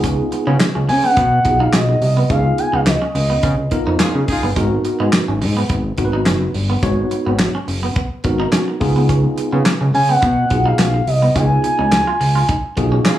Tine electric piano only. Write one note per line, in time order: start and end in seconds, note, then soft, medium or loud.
0.00 0.66 B3 medium
0.00 0.66 D#4 medium
0.00 0.66 F4 medium
0.00 0.67 G#4 loud
1.45 1.96 B3 medium
1.45 1.96 D#4 medium
1.45 1.96 F4 medium
1.45 1.96 G#4 medium
2.30 2.98 B3 medium
2.30 2.99 D#4 medium
2.30 2.99 F4 medium
2.30 2.99 G#4 medium
3.71 4.23 B3 medium
3.71 4.23 D#4 medium
3.71 4.23 F4 medium
3.71 4.23 A#4 loud
4.56 5.25 B3 medium
4.56 5.25 D#4 medium
4.56 5.25 F#4 medium
4.56 5.25 A#4 loud
5.98 6.49 B3 medium
5.98 6.49 D#4 medium
5.98 6.49 F#4 medium
5.98 6.05 A#4 medium
6.05 6.53 B4 medium
6.82 7.51 B3 medium
6.82 7.51 D#4 medium
6.82 7.51 F#4 medium
6.82 7.52 C#5 medium
8.24 8.75 B3 medium
8.24 8.76 D#4 medium
8.24 8.76 F#4 medium
8.24 8.76 A#4 loud
8.81 9.72 B3 loud
8.81 9.72 D#4 medium
8.81 9.72 F4 medium
8.81 9.72 G#4 loud
10.50 11.02 B3 medium
10.50 11.02 D#4 medium
10.50 11.02 F4 medium
10.50 11.02 G#4 medium
11.35 12.04 B3 medium
11.35 12.04 D#4 medium
11.35 12.04 F4 medium
11.35 12.04 G#4 medium
12.77 13.19 B3 medium
12.77 13.19 D#4 medium
12.77 13.19 F4 medium
12.77 13.19 G#4 loud